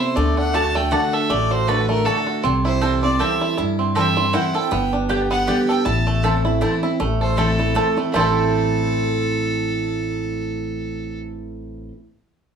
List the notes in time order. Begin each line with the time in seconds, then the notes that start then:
Already playing: C3 A3 A4
0.00 E4 C5
0.16 D2 D3 A3 D5
0.37 D4 F#5
0.53 D3 A3 D4 F#4 D5 A5
0.75 A3 D4 F#4 G5
0.91 D3 A3 D4 F#4 D5 F#5 A5
1.13 A4 E5
1.30 A1 A2 A3 D5
1.51 F#4 C5
1.67 D3 A3 D4 F#4 A4 B4 D5 A5
1.89 A3 A#4
2.05 D3 A3 D4 F#4 A4 D5 A5
2.27 F#4
2.44 C2 C3 C4
2.64 E4 C5
2.81 E3 G3 C4 E4 A4 C5 G5
3.03 C4 E4 D5
3.19 E3 G3 C4 E4 A4 C5 E5 G5
3.41 E4
3.58 G2 E4
3.79 C4
3.95 E3 G3 C4 E4 A4 C5 E5 G5
4.17 C4 E4
4.33 E3 G3 C4 E4 C5 F#5 G5
4.54 C4 E4 A4 G5
4.71 G1 G2 B3
4.93 D4
5.09 D3 G3 B3 G4 D5 G5
5.31 B3 F#5
5.47 D3 G3 B3 G4 D5 G5
5.69 A4 G5
5.85 A1 A2 E4 A5
6.07 A3
6.23 E3 A3 C4 E4 A4 C5 A5
6.45 C4 E4
6.61 E3 A3 C4 E4 C5 A5
6.83 C4 E4
7.00 A1 A2 A3
7.21 A4 C5
7.37 E3 A3 C4 E4 A4 C5 A5
7.59 C4 E4
7.75 E3 A3 C4 E4 A4 C5 A5
7.97 A3 C4 E4
8.12 A1 A2 E3 A3 C4 E4 A4 C5 A5
8.18 E4 A4